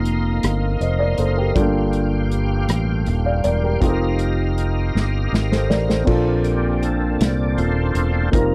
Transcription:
0.00 0.39 F1 medium
0.00 1.51 A#3 medium
0.00 1.52 A#3 medium
0.00 1.52 C4 medium
0.00 1.52 D#4 medium
0.00 1.53 F4 medium
0.00 0.79 A#4 medium
0.00 1.54 D#5 medium
0.00 6.04 F5 medium
0.00 1.52 C6 medium
0.05 closed hi-hat soft
0.43 0.78 G1 medium
0.43 cross-stick medium
0.43 closed hi-hat medium
0.80 1.15 F1 medium
0.80 0.99 C5 soft
0.80 0.99 D#5 soft
0.80 closed hi-hat soft
0.99 1.18 A#4 soft
0.99 1.17 D5 medium
1.18 1.53 F#1 medium
1.18 1.37 A4 soft
1.18 1.36 C5 medium
1.18 closed hi-hat soft
1.37 1.55 G4 soft
1.37 1.73 A#4 medium
1.54 2.65 G1 medium
1.54 2.65 G2 medium
1.54 1.62 A3 soft
1.54 3.77 D4 medium
1.54 3.78 F4 medium
1.54 3.80 G4 medium
1.54 2.67 G4 medium
1.54 2.68 A4 medium
1.54 3.80 G5 medium
1.54 kick medium
1.54 closed hi-hat medium
1.61 3.80 A#3 medium
1.93 closed hi-hat soft
2.31 closed hi-hat soft
2.69 3.04 A1 medium
2.69 cross-stick medium
2.69 closed hi-hat medium
3.06 3.42 D#1 medium
3.06 closed hi-hat soft
3.25 3.43 D5 soft
3.25 3.43 F5 medium
3.44 3.79 E1 medium
3.44 3.63 A#4 soft
3.44 3.62 D5 medium
3.44 closed hi-hat soft
3.64 3.82 G4 soft
3.64 3.89 A#4 medium
3.80 4.91 F1 medium
3.80 6.03 C4 medium
3.80 6.03 D#4 medium
3.80 6.04 F4 medium
3.80 6.06 G4 medium
3.80 6.04 G4 medium
3.80 3.89 A4 medium
3.80 6.05 D#5 medium
3.80 6.06 A#5 medium
3.80 kick medium
3.80 closed hi-hat medium
3.90 5.34 A#4 medium
4.19 closed hi-hat soft
4.58 closed hi-hat soft
4.95 5.29 G1 medium
4.95 snare soft
5.33 5.67 G#1 medium
5.33 snare medium
5.52 5.70 A4 soft
5.52 5.69 C5 soft
5.52 snare medium
5.70 6.05 A1 medium
5.70 5.88 A#4 soft
5.70 5.88 D5 medium
5.70 snare medium
5.88 6.07 A4 soft
5.88 6.24 C5 medium
5.88 snare medium
6.04 7.16 A#1 medium
6.04 7.16 A#2 medium
6.04 8.28 A#3 medium
6.04 8.29 A#3 soft
6.04 8.28 C4 medium
6.04 8.29 C4 soft
6.04 8.29 D4 medium
6.04 8.30 D4 soft
6.04 8.29 F4 medium
6.04 8.30 A4 medium
6.04 kick medium
6.04 crash medium
6.44 6.84 G4 medium
6.44 closed hi-hat soft
6.82 7.21 A4 medium
6.82 closed hi-hat soft
7.19 7.55 C2 medium
7.19 7.59 D5 medium
7.19 snare medium
7.19 closed hi-hat medium
7.58 7.93 D#1 medium
7.58 8.30 F4 medium
7.58 8.30 A4 medium
7.58 8.35 C5 medium
7.58 closed hi-hat soft
7.95 8.30 E1 medium
7.95 closed hi-hat soft
8.32 8.55 F1 medium
8.32 8.55 G3 soft
8.32 8.55 A#3 medium
8.32 8.55 A#3 soft
8.32 8.55 C4 soft
8.32 8.55 D#4 soft
8.32 8.55 D#4 medium
8.32 8.55 F4 medium
8.32 8.55 A#4 medium
8.32 kick medium
8.32 closed hi-hat medium

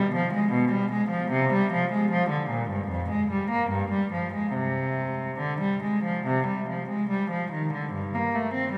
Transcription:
0.00 0.14 G3 medium
0.15 0.34 F3 medium
0.34 0.53 G#3 medium
0.52 0.72 B2 medium
0.72 0.91 G3 medium
0.92 1.11 G#3 medium
1.10 1.31 F3 medium
1.31 1.52 C3 medium
1.53 1.72 G3 medium
1.73 1.92 F3 medium
1.92 2.11 G#3 medium
2.11 2.31 F3 medium
2.30 2.50 D3 medium
2.50 2.69 A#2 medium
2.70 2.89 G2 medium
2.88 3.08 F2 medium
3.10 3.29 G#3 medium
3.31 3.50 G3 medium
3.51 3.70 A#3 medium
3.71 3.91 G2 medium
3.92 4.12 G3 medium
4.13 4.33 F3 medium
4.34 4.55 G#3 medium
4.54 5.38 C3 medium
5.39 5.61 D3 medium
5.61 5.82 G3 medium
5.83 6.04 G#3 medium
6.04 6.26 F3 medium
6.27 6.47 C3 medium
6.47 6.68 G3 medium
6.69 6.89 F3 medium
6.89 7.10 G#3 medium
7.10 7.30 G3 medium
7.30 7.52 F3 medium
7.52 7.73 D#3 medium
7.73 7.93 D3 medium
7.93 8.13 G2 medium
8.15 8.34 A#3 medium
8.35 8.54 A3 soft
8.54 8.73 C4 soft
8.72 8.78 G3 medium

